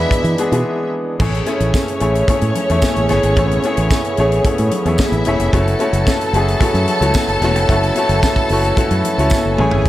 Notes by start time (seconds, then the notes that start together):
Already playing: E3 G#3 B3 D4 E4 F#4 G#4 B4 E5
0.11 muted fingered electric bass stroke, kick, closed hi-hat, muted conga
0.24 E3, closed hi-hat
0.38 E3 G#3 B3 D4 G#4, closed hi-hat
0.52 B2 E3 G#3 B3 D4 G#4, closed hi-hat
1.19 A1 C#3 E3 A3 C#4 E4 G#4 C#5, kick, crash, muted conga
1.34 closed hi-hat
1.46 A3 C#4 E4 G#4 C#5, closed hi-hat, muted conga
1.60 A1, closed hi-hat
1.74 kick, snare, tambourine, high conga
1.88 closed hi-hat
2.00 A1 A3 C#4 E4 G#4 C#5, closed hi-hat, muted conga
2.15 closed hi-hat
2.28 A3 C#4 E4 G#4 C#5, muted fingered electric bass stroke, kick, closed hi-hat, muted conga
2.41 A2, closed hi-hat
2.55 closed hi-hat, low conga
2.69 E2 A3 C#4 E4 G#4 C#5, closed hi-hat
2.82 kick, snare, tambourine, high conga
2.96 A1, closed hi-hat
3.09 G1 A3 C#4 E4 G#4 C#5, snare, closed hi-hat, high conga
3.23 G#1, closed hi-hat
3.36 A1 A3 B3 C#4 E4 G#4 C#5, kick, closed hi-hat, muted conga
3.51 closed hi-hat
3.63 A3 C#4 E4 G#4 C#5, closed hi-hat, muted conga
3.77 A1, closed hi-hat
3.90 kick, snare, tambourine, high conga
4.04 closed hi-hat
4.17 A1 A3 C#4 E4 G#4 C#5, closed hi-hat, muted conga
4.32 closed hi-hat
4.44 A3 C#4 E4 G#4 C#5, muted fingered electric bass stroke, kick, closed hi-hat, muted conga
4.58 A2, closed hi-hat
4.71 closed hi-hat, low conga
4.85 E2 A3 C#4 E4 G#4 C#5, closed hi-hat
4.98 E4 E5, kick, snare, tambourine, high conga
5.12 A1, closed hi-hat
5.25 E1 A3 C#4 E4 G#4 C#5, closed hi-hat, high conga
5.39 F1, closed hi-hat
5.53 F#1 F#3 A3 C#4 E4 F#4 A4 C#5 A5, kick, closed hi-hat, muted conga
5.68 closed hi-hat
5.79 A3 C#4 E4 F#4 C#5, closed hi-hat, muted conga
5.93 F#1, closed hi-hat
6.07 kick, snare, tambourine, high conga
6.21 closed hi-hat
6.33 F#1 A3 C#4 E4 F#4 G#4, closed hi-hat, muted conga
6.48 closed hi-hat
6.61 A3 C#4 E4 F#4 C#5, muted fingered electric bass stroke, kick, closed hi-hat, muted conga
6.74 F#2, closed hi-hat
6.88 closed hi-hat, low conga
7.01 C#2 A3 C#4 E4 F#4 C#5, closed hi-hat
7.14 kick, snare, tambourine, high conga
7.28 F#1, closed hi-hat
7.40 E1 A3 C#4 F#4, snare, closed hi-hat, high conga
7.44 E4 C#5
7.55 F1, closed hi-hat
7.69 F#1 A3 C#4 E4 F#4 C#5, kick, closed hi-hat, muted conga
7.83 closed hi-hat
7.95 A3 C#4 E4 F#4 C#5, closed hi-hat, muted conga
8.09 F#1, closed hi-hat
8.23 kick, snare, tambourine, high conga
8.36 kick, closed hi-hat
8.49 F#1 A3 C#4 E4 F#4 C#5, open hi-hat, muted conga
8.64 closed hi-hat
8.76 A3 C#4 E4 F#4 C#5, muted fingered electric bass stroke, kick, closed hi-hat, muted conga
8.91 F#2, closed hi-hat
9.04 closed hi-hat, low conga
9.18 C#2 A3 C#4 E4 F#4 C#5, closed hi-hat
9.30 kick, snare, tambourine, high conga
9.45 F#1
9.57 A1 A3 C#4 E4 G#4 C#5 G#5, mid tom, high conga
9.71 G#1, floor tom
9.86 A1, kick, closed hi-hat, muted conga